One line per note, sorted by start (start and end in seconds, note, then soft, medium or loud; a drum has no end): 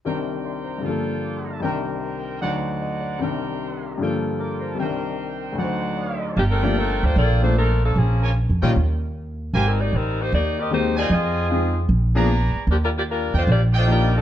0.05 0.84 C2 soft
0.05 0.84 C3 soft
0.05 0.84 D#3 soft
0.05 0.85 D4 soft
0.05 0.84 A#4 medium
0.05 0.85 A#4 soft
0.05 0.84 C5 medium
0.05 0.82 G5 medium
0.44 0.75 D5 soft
0.44 0.75 C6 soft
0.64 0.92 C5 soft
0.64 0.92 A#5 soft
0.78 1.60 G2 soft
0.78 1.61 D3 soft
0.83 1.63 F3 soft
0.83 1.64 A#3 soft
0.83 1.63 F4 medium
0.83 1.63 A4 medium
0.83 1.61 G5 medium
0.89 1.66 A4 soft
1.23 1.41 D6 soft
1.34 1.50 C6 soft
1.43 1.55 A#5 soft
1.52 1.66 A5 medium
1.60 2.40 C2 medium
1.60 2.41 C3 soft
1.60 2.42 D#3 soft
1.60 2.42 D4 soft
1.60 2.42 A#4 medium
1.60 2.40 C5 medium
1.60 2.42 G5 medium
1.65 2.43 A#4 medium
2.41 3.21 D2 soft
2.41 3.21 D3 soft
2.41 3.21 F#3 soft
2.41 3.21 D#4 medium
2.41 3.21 D#4 soft
2.41 3.20 C5 medium
2.41 3.21 C5 soft
2.41 3.21 D5 medium
2.41 3.21 F#5 medium
2.82 3.12 D#5 soft
3.01 3.28 D5 soft
3.19 3.99 C2 soft
3.19 4.00 C3 soft
3.19 4.00 D#3 soft
3.19 4.01 D4 soft
3.19 4.00 A#4 medium
3.19 4.00 C5 medium
3.19 3.99 G5 medium
3.24 4.01 A#4 medium
3.61 3.91 C6 soft
3.81 4.08 A#5 soft
3.98 4.78 G2 soft
3.98 4.79 D3 soft
3.98 4.79 F3 soft
3.98 4.80 A#3 soft
3.98 4.80 F4 medium
3.98 4.79 A4 medium
3.98 4.77 G5 medium
4.02 4.80 A4 medium
4.40 4.71 A#4 soft
4.40 4.58 D6 soft
4.49 4.66 C6 soft
4.59 4.88 C5 soft
4.59 4.72 A#5 soft
4.69 4.83 A5 medium
4.75 5.56 C2 soft
4.75 5.57 C3 soft
4.75 5.58 G5 medium
4.79 5.59 D#3 soft
4.79 5.58 A#4 medium
4.79 5.56 C5 medium
4.83 5.60 D4 soft
4.83 5.61 A#4 soft
5.52 6.34 D2 soft
5.52 6.36 D3 soft
5.57 6.37 F#3 soft
5.57 6.37 D#4 medium
5.57 6.38 D#4 soft
5.57 6.37 C5 medium
5.57 6.37 D5 medium
5.57 6.37 F#5 medium
5.64 6.40 C5 soft
5.97 6.28 D5 soft
5.97 6.16 D#6 soft
6.08 6.25 D6 soft
6.18 6.46 D#5 soft
6.18 6.30 C6 soft
6.28 6.42 A5 medium
6.37 6.99 G1 medium
6.37 6.43 F3 medium
6.37 6.43 A#3 medium
6.37 6.43 D4 medium
6.37 7.48 F4 medium
6.37 6.43 G4 medium
6.37 7.48 A4 medium
6.37 7.48 A#4 medium
6.37 7.48 G5 medium
6.51 6.63 F3 medium
6.51 6.63 A3 medium
6.51 6.63 D4 medium
6.51 6.63 A#4 medium
6.62 6.75 F3 medium
6.62 6.75 A3 soft
6.62 6.75 A#3 medium
6.62 6.77 A#3 medium
6.62 6.75 D4 medium
6.62 6.77 F4 medium
6.62 6.75 G4 medium
6.62 6.77 A4 medium
6.62 6.77 D5 medium
6.78 7.02 F3 medium
6.78 7.02 A3 medium
6.78 7.02 D4 medium
6.78 7.01 A#4 medium
7.03 7.15 D2 medium
7.03 7.17 A3 medium
7.03 7.17 D4 medium
7.03 7.17 F4 medium
7.03 7.17 C5 medium
7.16 7.91 A#1 medium
7.16 7.42 A#3 medium
7.16 7.42 F4 medium
7.16 7.42 A4 medium
7.16 7.42 D5 medium
7.42 7.54 F3 medium
7.42 7.54 A3 soft
7.42 7.55 A3 medium
7.42 7.54 A#3 soft
7.42 7.55 D4 soft
7.42 7.55 D4 medium
7.42 7.55 F4 medium
7.42 7.55 A4 medium
7.42 7.55 C5 medium
7.57 7.81 F3 medium
7.57 7.81 A3 medium
7.57 7.81 D4 medium
7.57 7.81 A#4 medium
7.84 7.96 F3 medium
7.84 7.95 A#3 medium
7.84 7.95 D4 medium
7.84 7.96 A4 medium
7.96 8.44 A#1 medium
7.96 8.35 F3 medium
7.96 8.35 A#3 medium
7.96 8.35 C#4 medium
7.96 8.35 G#4 medium
8.22 8.31 F4 medium
8.22 8.31 A#4 medium
8.22 8.31 C#5 medium
8.22 8.31 G#5 medium
8.49 8.61 F2 medium
8.61 8.74 A#2 medium
8.61 8.73 D#3 medium
8.61 8.73 G3 medium
8.61 8.73 A#3 medium
8.61 8.74 C#4 medium
8.61 8.70 F4 medium
8.61 8.74 F4 medium
8.61 8.70 C#5 medium
8.61 8.70 D#5 medium
8.61 8.70 G5 medium
8.76 9.50 D#2 medium
9.53 9.90 G#1 medium
9.53 9.66 D#3 medium
9.53 9.66 A#3 medium
9.53 9.66 C4 medium
9.53 9.71 G4 medium
9.53 9.66 G4 medium
9.53 9.71 A#4 medium
9.53 9.71 C5 medium
9.53 9.71 G#5 medium
9.68 9.80 G3 medium
9.68 9.80 C4 medium
9.68 9.80 D#4 medium
9.68 9.80 A#4 medium
9.81 9.93 A#3 medium
9.81 9.93 D#4 medium
9.81 9.93 G4 medium
9.81 9.93 D5 medium
9.93 10.29 A1 medium
9.93 10.20 G3 medium
9.93 10.20 C4 medium
9.93 10.20 D#4 medium
9.93 10.20 A#4 medium
10.21 10.33 A#3 medium
10.21 10.33 D#4 medium
10.21 10.33 G4 medium
10.21 10.33 C5 medium
10.32 11.07 D#2 medium
10.32 10.57 A#3 medium
10.32 10.57 D#4 medium
10.32 10.57 G4 medium
10.32 10.57 D5 medium
10.60 10.72 C4 medium
10.60 10.72 G4 medium
10.60 10.72 A#4 medium
10.60 10.72 D#5 loud
10.71 10.94 D#3 medium
10.71 10.95 G#3 medium
10.71 10.95 A#3 medium
10.71 10.96 A#3 medium
10.71 10.95 C4 medium
10.71 10.97 D#4 medium
10.71 10.95 G4 medium
10.71 10.97 G4 medium
10.71 10.96 C5 medium
10.96 11.10 A#3 medium
10.96 11.10 D#4 medium
10.96 11.47 F4 medium
10.96 11.10 G4 medium
10.96 11.47 C5 medium
10.96 11.10 D5 loud
10.96 11.47 D#5 medium
10.96 11.47 G#5 loud
11.10 11.85 F2 medium
11.10 11.90 C4 medium
11.10 11.90 F4 medium
11.10 11.90 G#4 medium
11.10 11.90 D#5 medium
11.50 11.73 F3 medium
11.50 11.74 G#3 medium
11.50 11.74 C4 soft
11.50 11.74 D#4 soft
11.50 11.74 G#4 medium
11.89 12.51 A#1 medium
12.15 12.27 F3 medium
12.15 12.27 A#3 medium
12.15 12.28 B3 medium
12.15 12.28 D4 medium
12.15 12.65 G#4 medium
12.15 12.28 G#4 medium
12.15 12.65 B4 medium
12.15 12.65 D5 medium
12.15 12.65 A#5 medium
12.54 muted upright bass stroke soft
12.67 13.29 D#2 medium
12.67 12.76 F3 medium
12.67 12.76 D4 medium
12.67 12.76 G4 medium
12.71 12.76 A#3 medium
12.84 12.90 G3 medium
12.84 12.90 D4 medium
12.84 12.89 F4 medium
12.84 12.90 A#4 medium
12.98 13.03 A#3 medium
12.98 13.03 F4 medium
12.98 13.03 G4 medium
12.98 13.03 D5 medium
13.10 13.33 G3 medium
13.10 13.33 D4 medium
13.10 13.34 F4 medium
13.10 13.34 A#4 medium
13.34 13.46 E2 medium
13.34 13.48 A3 medium
13.34 13.43 F4 medium
13.34 13.48 F4 medium
13.34 13.48 C5 medium
13.34 13.43 D5 medium
13.34 13.43 D#5 medium
13.34 13.43 G5 medium
13.38 13.48 D4 medium
13.47 14.21 A#1 medium
13.51 13.62 A#3 medium
13.51 13.62 F4 medium
13.51 13.62 G4 medium
13.51 13.62 D5 loud
13.73 14.21 F4 medium
13.73 14.21 D5 medium
13.73 14.21 D#5 medium
13.73 14.21 G5 loud
13.78 13.88 A3 medium
13.78 13.88 D4 medium
13.78 13.88 F4 medium
13.78 13.88 C5 medium
13.87 14.10 F3 medium
13.87 14.10 A#3 medium
13.87 14.10 D4 soft
13.87 14.10 D#4 medium
13.87 14.11 G4 medium
13.91 14.13 G3 medium
13.91 14.13 D4 medium
13.91 14.13 F4 medium
13.91 14.13 A#4 medium
14.16 14.21 F3 medium
14.16 14.21 A#3 medium
14.16 14.21 D4 medium
14.16 14.21 A4 medium